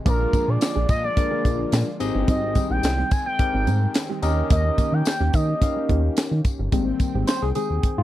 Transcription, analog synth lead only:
0.07 0.51 A#4 loud
0.49 0.89 D5 loud
0.90 1.03 D#5 loud
1.04 1.96 D5 loud
2.29 2.68 D#5 loud
2.70 3.13 G5 loud
3.12 3.26 G#5 loud
3.26 4.19 G5 loud
4.51 4.95 D#5 loud
4.93 5.36 G5 loud
5.34 6.17 D#5 loud

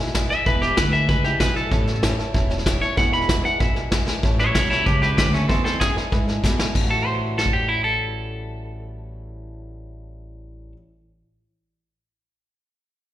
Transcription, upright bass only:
0.00 0.28 B1 medium
0.46 0.68 E1 medium
0.78 1.04 D2 medium
1.09 1.36 C#2 medium
1.40 1.67 B1 medium
1.72 2.16 A1 medium
2.35 2.79 E1 medium
2.98 3.42 E1 medium
3.61 4.05 B1 medium
4.24 4.54 A1 medium
4.55 4.85 B1 loud
4.87 5.17 C#2 medium
5.18 5.48 D2 loud
5.50 5.80 E2 medium
5.81 5.96 F#2 loud
5.97 muted upright bass stroke soft
6.13 6.43 G#2 medium
6.44 6.74 B2 medium
6.75 10.73 A1 medium

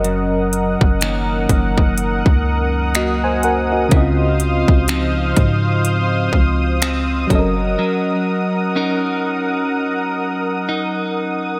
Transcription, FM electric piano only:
0.00 3.37 F#3 medium
0.00 3.39 C#4 medium
0.00 2.92 A#4 medium
0.00 2.93 D#5 medium
2.96 3.22 F#4 medium
2.96 3.22 D#5 medium
3.24 3.43 C5 medium
3.24 3.43 G#5 medium
3.44 3.71 A#4 medium
3.44 3.70 F#5 medium
3.72 4.18 F#4 soft
3.72 3.95 D#5 medium
3.89 7.25 C#3 medium
3.89 7.26 C4 medium
3.94 4.00 E4 medium
3.94 7.29 D#5 medium
4.00 7.31 F4 medium
7.27 11.12 F#3 medium
7.27 11.13 C#4 medium
7.32 7.39 A4 medium
7.32 11.16 D#5 medium
7.39 11.18 A#4 medium

